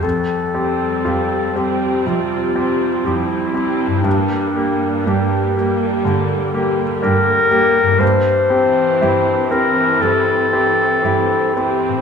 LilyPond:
<<
  \new Staff \with { instrumentName = "Clarinet" } { \time 4/4 \key f \major \tempo 4 = 60 a'4. g'8 f'4 e'4 | d'4 g'4. r8 bes'4 | c''4. bes'8 a'4. g'8 | }
  \new Staff \with { instrumentName = "Grand piano" } { \time 4/4 \key f \major f,8 <c' g'>8 <f' g'>8 <c' g'>8 c8 <c' g'>8 <f g'>8 <c' g'>8 | g,8 <bes g'>8 <d' g'>8 <bes g'>8 d8 <bes g'>8 <d' g'>8 <bes g'>8 | g,8 <c' g'>8 <e' g'>8 <c' g'>8 g8 <c' g'>8 <e' g'>8 <c' g'>8 | }
  \new Staff \with { instrumentName = "Harp" } { \time 4/4 \key f \major <f, g g' c''>1 | <g, g g' bes'>1 | <g, g e' c''>1 | }
  \new Staff \with { instrumentName = "Viola section" } { \clef bass \time 4/4 \key f \major r8 <g c'>4 <g c'>4 <g c'>4 <g c'>8 | <g bes>8 <g bes>4 <g bes>4 <g bes>4 <g bes>8 | r8 <e c'>4 <e c'>4 <e c'>4 <e c'>8 | }
  \new Staff \with { instrumentName = "Cello section" } { \clef bass \time 4/4 \key f \major f,4 f,4 f,4 f,4 | g,4 g,4 g,4 g,4 | g,4 g,4 g,4 g,4 | }
>>